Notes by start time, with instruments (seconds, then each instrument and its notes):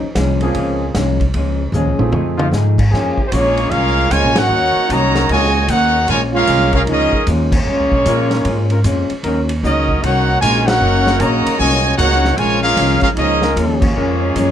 Already playing: alto saxophone D#4
0.01 muted upright bass stroke
0.15 upright bass C2, hollow-body jazz guitar A#2 F3 G#3 C#4, kick, snare, hi-hat pedal, ride
0.41 trombone section F3 A#3 G#4, grand piano A#3 C4 C#4 F4 G#4, ride
0.55 upright bass C#2, hollow-body jazz guitar A#2 F3 G#3, kick, ride
0.59 hollow-body jazz guitar C#4
0.95 upright bass C2, hollow-body jazz guitar A#2 F3 G#3 C#4, kick, snare, hi-hat pedal, ride
1.20 kick, ride
1.34 upright bass C#2, hollow-body jazz guitar A#2 F3 G#3 C#4, kick, ride
1.72 upright bass D#2, hollow-body jazz guitar A#2 F3 G#3 C#4, trombone section F3 G#4, hi-hat pedal, mid tom
1.85 upright bass C#2
1.99 upright bass A#1, grand piano A3 C4 D#4 F4 G#4, mid tom
2.12 upright bass F2, hollow-body jazz guitar F3 A3 D#4, high tom
2.16 hollow-body jazz guitar G#4
2.37 trombone section F3 A3 D#4 F4, high tom
2.51 upright bass G#2, hollow-body jazz guitar F3 A3 D#4 G#4, snare, hi-hat pedal
2.78 kick, crash
2.89 upright bass F2, hollow-body jazz guitar A#2, trombone section F3 A#3 C#4 G#4, kick
2.93 hollow-body jazz guitar G#3 C#4 F4, snare
3.17 muted upright bass stroke, kick
3.27 trombone section F3 G#3 C#4, trumpet section C5
3.32 upright bass A#1, hollow-body jazz guitar A#2 G#3 C#4 F4, trumpet section A#3 F4 G#4 C#5, kick, hi-hat pedal, ride
3.57 ride
3.70 upright bass C2, hollow-body jazz guitar A#2 G#3 C#4 F4, trombone section G#3 C#4 F4, trumpet section C#4 G#4 A#4 F5, kick, ride
4.10 upright bass C#2, hollow-body jazz guitar A#2 G#3 C#4 F4, trombone section C#3 F3 G#3, trumpet section F4 A#4 C#5 G#5, kick, hi-hat pedal, ride
4.24 upright bass A#1
4.34 upright bass G#1, trombone section F#3 A#3 C#4 D#4 F#4 G#4, snare, ride
4.38 trumpet section D#4 A#4 C#5 F#5
4.49 upright bass D#2, hollow-body jazz guitar D#3 A#3 C#4 F#4
4.75 muted upright bass stroke
4.89 upright bass C2, hollow-body jazz guitar D#3 A#3 C#4 F#4, trombone section F#3 A#3 C#4, trumpet section F#4 C#5 D#5 A#5, kick, hi-hat pedal, ride
5.13 trombone section F#3 C#4 D#4 A#4, snare, ride
5.29 upright bass C#2, trombone section A#2 C#3 G#3, hollow-body jazz guitar D#3 A#3 C#4, trumpet section F#4 C#5 D#5 G#5, kick, ride
5.33 hollow-body jazz guitar F#4
5.68 upright bass D#2, hollow-body jazz guitar D#3 A#3 C#4 F#4, trombone section A#3 C#4 F#4, trumpet section D#4 A#4 C#5 F#5, kick, hi-hat pedal, ride
6.08 upright bass A#1, hollow-body jazz guitar A#2 G#3 C#4 F4, trombone section C#3 F3 G#3, trumpet section F4 A#4 C#5 G#5, kick, ride
6.32 trombone section G#3 C#4 F4, trumpet section C#4 A#4
6.36 trumpet section G#4 F5
6.47 upright bass C2, hollow-body jazz guitar A#2 G#3 C#4 F4, kick, hi-hat pedal, ride
6.73 trombone section G#3 C#4 F4 A#4, trumpet section C#4 G#4 A#4 F5, kick, ride
6.87 upright bass C#2, hollow-body jazz guitar A#2 G#3 C#4, trombone section F3 G#3 D#4, kick, ride
6.91 trumpet section C#4 G#4 A#4 D#5, hollow-body jazz guitar F4
7.12 muted upright bass stroke, kick
7.27 upright bass D#2, hollow-body jazz guitar A#2 G#3 C#4 F4, kick, hi-hat pedal, ride
7.52 trombone section F3 G#3 C#4, trumpet section A#3 G#4 C#5, kick, crash
7.56 trumpet section F4
7.65 upright bass F2, hollow-body jazz guitar A#2 G#3 C#4
7.70 hollow-body jazz guitar F4
7.80 upright bass C#2
7.92 upright bass A#1, kick
8.05 hollow-body jazz guitar A#2 G#3 C#4 F4, upright bass A#2, trombone section G#3 C#4 F4 A#4, kick, hi-hat pedal, ride
8.31 snare, ride
8.45 upright bass G#2, hollow-body jazz guitar A#2 G#3 C#4, kick, ride
8.49 hollow-body jazz guitar F4
8.70 trombone section G#3 C#4 F4 A#4, ride
8.84 upright bass F2, hollow-body jazz guitar A#2 G#3 C#4 F4, kick, hi-hat pedal, ride
9.10 muted upright bass stroke, ride
9.23 upright bass D#2, hollow-body jazz guitar D#3 A#3 C#4, trombone section F#3 C#4 D#4 A#4, kick, ride
9.27 hollow-body jazz guitar F#4
9.49 ride
9.63 upright bass C#2, hollow-body jazz guitar D#3 A#3 C#4 F#4, trombone section F#3 A#3 D#4, trumpet section C#4 F#4 A#4 D#5, kick, hi-hat pedal
9.89 kick
10.03 upright bass C2, hollow-body jazz guitar D#3 A#3 C#4 F#4, trombone section A#3 C#4 F#4, trumpet section D#4 A#4 C#5 F#5, kick, ride
10.41 upright bass A#1, hollow-body jazz guitar D#3 A#3 C#4 F#4, trombone section G#3, trumpet section F4 A#4 C#5 G#5, kick, hi-hat pedal, ride
10.67 trombone section A#3 C#4 F#4, trumpet section D#4 A#4 C#5 F#5, snare, ride
10.80 upright bass F#1, hollow-body jazz guitar D#3 A#3 C#4 F#4, trombone section F#3 C#4 D#4 A#4
11.07 snare
11.19 upright bass A#1, trombone section C#3 F#3 A#3, hollow-body jazz guitar D#3 A#3 C#4 F#4, trumpet section F#4 C#5 D#5 A#5, kick, hi-hat pedal, ride
11.46 muted upright bass stroke, ride
11.57 upright bass C2, trombone section A#2 G#3 C#4, hollow-body jazz guitar D#3 A#3, trumpet section F#4 C#5 D#5 G#5, kick
11.61 hollow-body jazz guitar C#4 F#4
11.98 upright bass C#2, hollow-body jazz guitar D#3 A#3 C#4 F#4, trombone section A#3 C#4 F#4, trumpet section D#4 A#4 C#5 F#5, kick, hi-hat pedal, ride
12.12 snare
12.25 snare
12.36 upright bass A#1, hollow-body jazz guitar A#2 F3 G#3 C#4, trombone section C#3 F3 G#3, trumpet section F4 A#4 C#5 G#5, kick, ride
12.62 trombone section G#3 C#4 F4, trumpet section C#4 G#4 A#4 F5
12.77 upright bass C2, hollow-body jazz guitar A#2 F3 G#3 C#4, kick, snare, hi-hat pedal, ride
13.00 trombone section G#3 C#4 F4, trumpet section C#4 G#4 A#4 F5, muted upright bass stroke, kick, ride
13.14 upright bass C#2, hollow-body jazz guitar A#2, trombone section F3 G#3 D#4, kick, ride
13.18 hollow-body jazz guitar F3 G#3 C#4, trumpet section C#4 G#4 A#4 D#5
13.42 trombone section G#3 C#4 F4 A#4, snare
13.56 upright bass D#2, hollow-body jazz guitar A#2 F3 G#3 C#4, kick, hi-hat pedal, ride
13.80 trombone section F3 G#3 C#4, trumpet section A#3 F4 G#4 C#5, kick, crash
13.95 upright bass F2, hollow-body jazz guitar A#2 F3 G#3 C#4, trombone section G#3 C#4 F4 A#4
14.34 upright bass F#2, hollow-body jazz guitar A#2 F3 G#3 C#4, kick, hi-hat pedal, ride